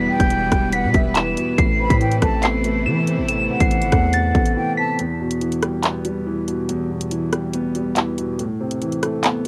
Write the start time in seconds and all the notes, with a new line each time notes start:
Already playing: E2 B2 E3 G3 B3 E4 B4 B6
0.09 B2 G5
0.20 E1 G6, kick, closed hi-hat
0.30 E3, closed hi-hat
0.52 E1 G3, kick, cross-stick, closed hi-hat
0.73 B3 F#5 B6, closed hi-hat
0.84 B2
0.94 E1 G3 E5 B6, kick, closed hi-hat
1.15 E3 E7, clap, closed hi-hat
1.37 B2, closed hi-hat
1.58 A1 A2 C3 A3 E4 C7, kick, closed hi-hat
1.79 C3 B5
1.90 A2 B6, kick, closed hi-hat
2.00 E3 G5, closed hi-hat
2.11 closed hi-hat
2.22 A1 A3 A5, kick, cross-stick, closed hi-hat
2.43 B3 C7, clap, closed hi-hat
2.64 A3, closed hi-hat
2.86 E3 E7
3.07 C3, closed hi-hat
3.18 A1
3.28 A2 E7, closed hi-hat
3.50 C3 F#5
3.60 A1 C7, kick, closed hi-hat
3.71 E3, closed hi-hat
3.82 G1, closed hi-hat
3.92 E2 A3, kick, cross-stick, closed hi-hat
4.13 B3 A6, closed hi-hat
4.35 A1 A3, kick, closed hi-hat
4.46 closed hi-hat
4.56 E3 G5
4.77 C3 A5 B6
4.99 E2, closed hi-hat
5.20 B2
5.31 closed hi-hat
5.41 E3, closed hi-hat
5.52 closed hi-hat
5.63 G3, cross-stick, closed hi-hat
5.83 B3, clap, closed hi-hat
6.05 G3, closed hi-hat
6.26 E3
6.48 B2, closed hi-hat
6.69 E2, closed hi-hat
6.90 B2
7.01 closed hi-hat
7.11 E3, closed hi-hat
7.33 G3, cross-stick, closed hi-hat
7.53 B3, closed hi-hat
7.75 G3, closed hi-hat
7.96 E3, clap, closed hi-hat
8.18 B2, closed hi-hat
8.39 A2, closed hi-hat
8.60 C3
8.71 closed hi-hat
8.82 E3, closed hi-hat
8.92 closed hi-hat
9.03 A3, cross-stick, closed hi-hat
9.24 B3, clap, closed hi-hat